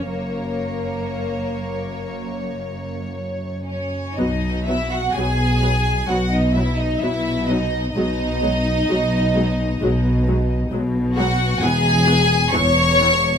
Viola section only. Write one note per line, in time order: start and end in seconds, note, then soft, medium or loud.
0.07 3.11 A#3 medium
4.18 4.26 F#3 medium
4.18 4.26 B3 medium
4.68 4.76 F#3 medium
4.68 4.76 B3 medium
5.16 5.24 F#3 medium
5.16 5.24 B3 medium
5.61 5.69 F#3 medium
5.61 5.69 B3 medium
6.09 6.18 F#3 medium
6.09 6.17 B3 medium
6.56 6.64 F#3 medium
6.56 6.64 B3 medium
7.02 7.10 F#3 medium
7.02 7.10 B3 medium
7.49 7.57 F#3 medium
7.49 7.57 B3 medium
7.96 8.04 F#3 medium
7.96 8.04 G#3 medium
8.41 8.50 F#3 medium
8.41 8.49 G#3 medium
8.89 8.97 F#3 medium
8.89 8.97 G#3 medium
9.35 9.44 F#3 medium
9.35 9.43 G#3 medium
9.81 9.89 F#3 medium
9.81 9.90 G#3 medium
10.28 10.36 F#3 medium
10.28 10.36 G#3 medium
10.72 10.80 F#3 medium
10.72 10.81 G#3 medium
11.17 11.26 F#3 medium
11.17 11.25 G#3 medium
11.62 11.70 E3 medium
11.62 11.70 B3 medium
12.08 12.16 E3 medium
12.08 12.16 B3 medium
12.53 12.61 E3 medium
12.53 12.61 B3 medium
13.00 13.08 E3 medium
13.00 13.08 B3 medium